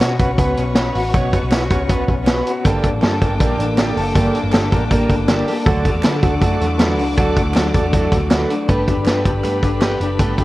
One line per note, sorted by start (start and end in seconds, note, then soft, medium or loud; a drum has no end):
0.00 1.13 B2 medium
0.00 0.17 B2 loud
0.00 0.12 B3 medium
0.00 0.18 C#4 medium
0.00 0.13 C#4 medium
0.00 0.13 F#4 medium
0.00 0.94 F#4 medium
0.00 2.62 B4 medium
0.00 2.62 C#5 medium
0.00 0.13 C#5 medium
0.00 2.62 F#5 medium
0.00 2.62 C#6 medium
0.00 snare loud
0.00 closed hi-hat loud
0.19 0.36 B1 medium
0.19 0.32 B3 medium
0.19 0.32 C#4 medium
0.19 0.56 C#4 medium
0.19 0.32 F#4 medium
0.19 0.32 B4 medium
0.19 kick medium
0.19 closed hi-hat medium
0.38 0.54 C#2 loud
0.38 0.63 B3 medium
0.38 0.75 B3 medium
0.38 0.63 C#4 medium
0.38 0.63 F#4 medium
0.38 0.64 B4 loud
0.38 kick medium
0.38 closed hi-hat medium
0.57 0.90 B1 loud
0.57 1.33 C#4 medium
0.57 closed hi-hat medium
0.75 1.01 B3 medium
0.75 1.32 B3 medium
0.75 1.01 C#4 medium
0.75 1.01 F#4 medium
0.75 1.01 B4 medium
0.75 snare loud
0.75 clap medium
0.75 closed hi-hat medium
0.95 1.11 A1 medium
0.95 1.52 F#4 medium
0.95 open hi-hat medium
1.13 1.30 B1 loud
1.13 2.65 B2 medium
1.13 1.38 B3 loud
1.13 1.38 C#4 medium
1.13 1.39 F#4 loud
1.13 1.39 C#5 loud
1.13 kick loud
1.13 closed hi-hat medium
1.33 1.43 B3 medium
1.33 kick medium
1.33 closed hi-hat medium
1.43 1.71 B1 loud
1.43 1.70 C#4 medium
1.51 1.63 B3 medium
1.51 1.64 C#4 medium
1.51 1.62 E4 medium
1.51 1.64 F#4 medium
1.51 1.64 B4 medium
1.51 snare loud
1.51 clap medium
1.51 closed hi-hat loud
1.62 2.46 F#4 medium
1.70 2.03 C#2 medium
1.70 1.82 B3 medium
1.70 1.83 C#4 medium
1.70 2.07 C#4 medium
1.70 1.83 F#4 medium
1.70 1.83 C#5 medium
1.70 kick medium
1.70 closed hi-hat medium
1.89 2.14 B3 medium
1.89 2.27 B3 medium
1.89 2.14 C#4 medium
1.89 2.14 F#4 medium
1.89 2.15 B4 medium
1.89 kick loud
1.89 closed hi-hat medium
2.08 2.40 B1 loud
2.08 2.69 C#4 medium
2.08 kick loud
2.08 closed hi-hat medium
2.27 2.52 B3 medium
2.27 2.69 B3 medium
2.27 2.52 C#4 medium
2.27 2.52 F#4 medium
2.27 2.53 B4 medium
2.27 snare loud
2.27 clap loud
2.27 closed hi-hat medium
2.47 2.69 F#4 medium
2.47 closed hi-hat medium
2.65 2.89 G1 loud
2.65 2.83 G2 medium
2.65 2.84 D3 loud
2.65 2.84 G3 medium
2.65 2.89 A#3 loud
2.65 5.63 A#3 medium
2.65 2.83 A#3 medium
2.65 2.90 D4 medium
2.65 2.83 D4 loud
2.65 2.90 G4 medium
2.65 2.81 A4 loud
2.65 2.90 A4 loud
2.65 5.64 G5 medium
2.65 5.64 A5 medium
2.65 5.64 D6 medium
2.65 kick loud
2.65 closed hi-hat medium
2.83 3.02 G3 medium
2.83 3.02 A#3 medium
2.83 3.02 D4 medium
2.83 3.02 A4 medium
2.83 kick medium
2.83 closed hi-hat medium
2.93 3.01 A1 medium
3.02 3.21 G2 medium
3.02 3.19 G2 loud
3.02 3.21 D3 loud
3.02 3.22 G3 loud
3.02 3.15 A#3 medium
3.02 3.21 A#3 medium
3.02 3.15 D4 medium
3.02 3.20 D4 loud
3.02 3.15 G4 medium
3.02 3.19 A4 loud
3.02 3.16 A4 medium
3.02 snare loud
3.02 clap medium
3.02 closed hi-hat loud
3.20 3.37 G1 medium
3.20 3.38 G3 medium
3.20 3.34 A#3 medium
3.20 3.39 A#3 medium
3.20 3.40 D4 medium
3.20 3.34 D4 medium
3.20 3.35 G4 medium
3.20 3.40 A4 medium
3.20 3.35 A4 medium
3.20 kick medium
3.20 closed hi-hat medium
3.39 3.56 A#1 loud
3.39 3.58 G3 medium
3.39 3.59 A#3 medium
3.39 3.65 A#3 medium
3.39 3.58 D4 medium
3.39 3.65 D4 medium
3.39 3.65 G4 medium
3.39 3.57 A4 medium
3.39 3.66 A4 loud
3.39 kick loud
3.39 closed hi-hat medium
3.58 3.91 A1 medium
3.58 3.77 G3 soft
3.58 3.77 A#3 medium
3.58 3.77 D4 medium
3.58 3.77 A4 medium
3.58 closed hi-hat medium
3.77 3.96 G2 loud
3.77 3.97 D3 medium
3.77 3.97 G3 medium
3.77 4.02 A#3 medium
3.77 3.97 A#3 loud
3.77 3.96 D4 loud
3.77 4.03 D4 medium
3.77 4.03 G4 medium
3.77 3.95 A4 loud
3.77 4.03 A4 loud
3.77 snare loud
3.77 clap medium
3.77 closed hi-hat loud
3.97 4.13 F#1 loud
3.97 4.15 G3 medium
3.97 4.16 A#3 soft
3.97 4.16 D4 medium
3.97 4.16 A4 medium
3.97 open hi-hat medium
4.15 4.32 G1 loud
4.15 4.34 G2 medium
4.15 4.35 D3 loud
4.15 4.35 G3 loud
4.15 4.40 A#3 loud
4.15 4.35 A#3 loud
4.15 4.40 D4 loud
4.15 4.34 D4 loud
4.15 4.40 G4 loud
4.15 4.41 A4 loud
4.15 4.33 A4 loud
4.15 kick loud
4.15 closed hi-hat medium
4.34 4.53 G3 soft
4.34 4.53 A#3 medium
4.34 4.53 D4 medium
4.34 4.53 A4 medium
4.34 closed hi-hat medium
4.44 4.68 G1 loud
4.52 4.72 G2 medium
4.52 4.72 D3 medium
4.52 4.73 G3 loud
4.52 4.65 A#3 medium
4.52 4.73 A#3 loud
4.52 4.65 D4 medium
4.52 4.72 D4 loud
4.52 4.66 G4 medium
4.52 4.66 A4 medium
4.52 4.72 A4 loud
4.52 snare loud
4.52 clap medium
4.52 closed hi-hat loud
4.71 5.04 A1 medium
4.71 4.84 A#3 medium
4.71 4.91 A#3 medium
4.71 4.84 D4 medium
4.71 4.91 D4 medium
4.71 4.84 G4 medium
4.71 4.91 A4 medium
4.71 4.85 A#4 medium
4.71 kick medium
4.71 closed hi-hat medium
4.75 4.90 G3 medium
4.90 5.10 G3 medium
4.90 5.15 A#3 medium
4.90 5.10 A#3 medium
4.90 5.15 D4 medium
4.90 5.10 D4 medium
4.90 5.16 G4 medium
4.90 5.09 A4 medium
4.90 5.16 A#4 loud
4.90 kick loud
4.90 closed hi-hat medium
5.10 5.42 G1 loud
5.10 5.29 G3 medium
5.10 5.29 A#3 medium
5.10 5.29 D4 medium
5.10 5.29 A4 medium
5.10 kick medium
5.10 closed hi-hat medium
5.28 5.48 G2 medium
5.28 5.48 D3 loud
5.28 5.48 G3 loud
5.28 5.53 A#3 medium
5.28 5.48 A#3 loud
5.28 5.53 D4 medium
5.28 5.47 D4 medium
5.28 5.53 G4 medium
5.28 5.54 A4 loud
5.28 5.46 A4 loud
5.28 snare loud
5.28 clap medium
5.28 closed hi-hat medium
5.47 5.66 G3 medium
5.47 5.67 A#3 medium
5.47 5.66 D4 medium
5.47 5.56 G4 medium
5.47 5.66 A4 medium
5.47 open hi-hat medium
5.56 5.70 A4 medium
5.65 5.90 D2 loud
5.65 5.85 D3 medium
5.65 5.85 F#3 loud
5.65 5.90 A3 loud
5.65 5.86 A3 loud
5.65 5.91 D4 medium
5.65 5.86 D4 medium
5.65 5.91 F#4 loud
5.65 5.85 F#4 loud
5.65 8.65 A4 medium
5.65 5.91 A4 loud
5.65 8.65 D5 medium
5.65 8.65 F#5 medium
5.65 8.65 D6 loud
5.65 kick loud
5.65 closed hi-hat medium
5.85 5.95 G3 medium
5.85 6.04 A3 soft
5.85 6.05 D4 medium
5.85 6.04 F#4 medium
5.85 kick medium
5.85 closed hi-hat medium
5.94 6.03 E2 medium
5.94 6.21 A3 medium
6.03 6.20 D3 loud
6.03 6.23 D3 loud
6.03 6.23 F#3 medium
6.03 6.16 A3 medium
6.03 6.24 A3 medium
6.03 6.16 D4 medium
6.03 6.23 D4 loud
6.03 6.17 F#4 medium
6.03 6.21 F#4 loud
6.03 6.17 B4 loud
6.03 snare loud
6.03 clap medium
6.03 closed hi-hat loud
6.22 6.39 D2 loud
6.22 6.35 A3 medium
6.22 6.41 A3 medium
6.22 6.35 D4 medium
6.22 6.42 D4 medium
6.22 6.42 F#4 medium
6.22 6.35 F#4 medium
6.22 6.36 A4 medium
6.22 kick medium
6.22 closed hi-hat medium
6.40 6.58 F#2 loud
6.40 6.60 F#3 medium
6.40 6.66 A3 medium
6.40 6.61 A3 medium
6.40 6.66 D4 medium
6.40 6.61 D4 medium
6.40 6.66 F#4 medium
6.40 6.59 F#4 medium
6.40 6.67 A4 loud
6.40 kick medium
6.40 closed hi-hat medium
6.61 6.98 E2 loud
6.61 6.79 A3 medium
6.61 6.80 D4 medium
6.61 6.80 F#4 medium
6.61 closed hi-hat medium
6.78 6.98 D3 medium
6.78 6.99 F#3 medium
6.78 7.03 A3 medium
6.78 6.99 A3 loud
6.78 7.04 D4 medium
6.78 6.98 D4 medium
6.78 7.04 F#4 medium
6.78 6.97 F#4 medium
6.78 7.04 B4 loud
6.78 snare loud
6.78 clap medium
6.78 closed hi-hat loud
6.98 7.14 C#2 loud
6.98 7.17 A3 soft
6.98 7.17 D4 medium
6.98 7.17 F#4 medium
6.98 open hi-hat medium
7.17 7.33 D2 loud
7.17 7.36 D3 medium
7.17 7.36 F#3 loud
7.17 7.42 A3 loud
7.17 7.37 A3 medium
7.17 7.42 D4 loud
7.17 7.35 D4 loud
7.17 7.42 F#4 loud
7.17 7.34 F#4 loud
7.17 7.42 A4 loud
7.17 kick loud
7.17 closed hi-hat medium
7.35 7.54 A3 medium
7.35 7.55 D4 medium
7.35 7.55 F#4 medium
7.35 kick medium
7.35 closed hi-hat medium
7.45 7.70 D2 loud
7.54 7.74 D3 loud
7.54 7.74 F#3 loud
7.54 7.67 A3 medium
7.54 7.74 A3 loud
7.54 7.67 D4 medium
7.54 7.73 D4 medium
7.54 7.67 F#4 medium
7.54 7.72 F#4 loud
7.54 7.68 A4 medium
7.54 snare loud
7.54 clap loud
7.54 closed hi-hat medium
7.73 8.06 E2 medium
7.73 7.84 G3 medium
7.73 7.86 A3 medium
7.73 7.93 A3 soft
7.73 7.86 D4 medium
7.73 7.93 D4 medium
7.73 7.93 F#4 medium
7.73 7.86 F#4 medium
7.73 7.86 A4 medium
7.73 kick medium
7.73 closed hi-hat medium
7.84 8.11 A3 soft
7.92 8.12 F#3 medium
7.92 8.17 A3 medium
7.92 8.12 A3 medium
7.92 8.17 D4 medium
7.92 8.11 D4 medium
7.92 8.17 F#4 medium
7.92 8.10 F#4 medium
7.92 8.18 A4 medium
7.92 kick loud
7.92 closed hi-hat medium
8.11 8.44 D2 loud
8.11 8.30 A3 soft
8.11 8.31 D4 medium
8.11 8.30 F#4 medium
8.11 kick medium
8.11 closed hi-hat medium
8.30 8.50 D3 medium
8.30 8.50 F#3 medium
8.30 8.55 A3 medium
8.30 8.50 A3 medium
8.30 8.55 D4 medium
8.30 8.50 D4 loud
8.30 8.55 F#4 medium
8.30 8.48 F#4 loud
8.30 8.56 B4 loud
8.30 snare loud
8.30 clap loud
8.30 closed hi-hat medium
8.50 8.67 A3 medium
8.50 8.68 D4 medium
8.50 8.68 F#4 medium
8.50 closed hi-hat medium
8.68 8.85 G1 loud
8.68 8.87 G3 medium
8.68 8.87 A3 medium
8.68 8.93 B3 medium
8.68 8.88 D4 medium
8.68 8.93 G4 medium
8.68 8.87 G4 medium
8.68 10.44 G4 medium
8.68 10.44 A4 medium
8.68 8.94 A4 medium
8.68 8.85 B4 loud
8.68 10.44 D5 medium
8.68 10.44 B5 medium
8.68 kick loud
8.68 closed hi-hat medium
8.86 9.05 D4 soft
8.86 9.06 G4 medium
8.86 9.06 B4 medium
8.86 kick medium
8.86 closed hi-hat medium
8.97 9.05 G1 loud
9.05 9.22 G2 loud
9.05 9.25 G3 medium
9.05 9.25 A3 medium
9.05 9.30 B3 medium
9.05 9.25 D4 loud
9.05 9.31 G4 medium
9.05 9.25 G4 medium
9.05 9.31 A4 medium
9.05 9.24 B4 loud
9.05 snare medium
9.05 clap medium
9.05 closed hi-hat medium
9.25 9.41 G1 loud
9.25 9.43 D4 soft
9.25 9.44 G4 medium
9.25 9.44 B4 medium
9.25 kick medium
9.25 closed hi-hat medium
9.43 9.60 G2 loud
9.43 9.63 A3 medium
9.43 9.68 B3 medium
9.43 9.63 D4 medium
9.43 9.69 G4 medium
9.43 9.63 G4 medium
9.43 9.69 B4 medium
9.43 9.62 B4 medium
9.43 clap medium
9.43 closed hi-hat medium
9.63 9.95 G1 medium
9.63 9.81 D4 soft
9.63 9.81 G4 medium
9.63 9.81 B4 medium
9.63 kick medium
9.63 closed hi-hat medium
9.81 10.00 G3 medium
9.81 10.00 A3 medium
9.81 10.06 B3 medium
9.81 10.01 D4 medium
9.81 10.00 G4 medium
9.81 10.07 G4 medium
9.81 9.99 B4 loud
9.81 10.07 B4 medium
9.81 snare loud
9.81 clap loud
9.81 closed hi-hat medium
10.00 10.16 F#1 loud
10.00 10.18 D4 soft
10.00 10.19 G4 medium
10.00 10.19 B4 medium
10.00 closed hi-hat medium
10.19 10.35 G1 loud
10.19 10.38 G3 medium
10.19 10.38 A3 medium
10.19 10.44 B3 medium
10.19 10.38 D4 medium
10.19 10.44 G4 medium
10.19 10.37 G4 medium
10.19 10.44 A4 medium
10.19 10.36 B4 medium
10.19 kick loud
10.19 closed hi-hat medium
10.37 10.44 D4 soft
10.37 10.44 G4 medium
10.37 10.44 B4 medium
10.37 kick medium
10.37 closed hi-hat medium